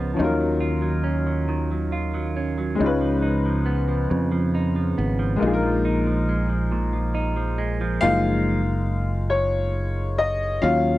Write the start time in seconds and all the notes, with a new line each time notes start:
Already playing: C#2 C#3 F3 G#3 B3 C#4 D#4 F4 B4
0.14 D#3 F3 C#4
0.19 D#2 F#3 D#4 F4
0.24 A#4
0.40 F#3
0.60 F4
0.82 F#3
1.04 C#4
1.27 F#3
1.49 D#3
1.71 F#3
1.92 F4
2.14 F#3
2.37 C#4
2.58 F#3
2.75 G#3 C#4
2.80 C#2 C#3 D#4 F4
2.86 B4
3.01 F3
3.22 D#4
3.46 F3
3.66 B3
3.88 F3
4.10 F2 C#3
4.32 F3
4.55 D#4
4.76 F3
4.98 G#1 B3
5.19 F3
5.36 A#2 G#3 A#3
5.42 A#1 D#4 F4
5.47 G#4
5.53 A#4
5.63 F3
5.85 D#4
6.07 F3
6.29 G#3
6.49 F3
6.72 A#2
6.93 F3
7.15 D#4
7.37 F3
7.58 G#3
7.81 F3
8.01 F#1 G#3 A#3 D#4 F4 F5
9.30 C#5
10.18 D#5
10.61 D#2 F#3 C#4 F4 F5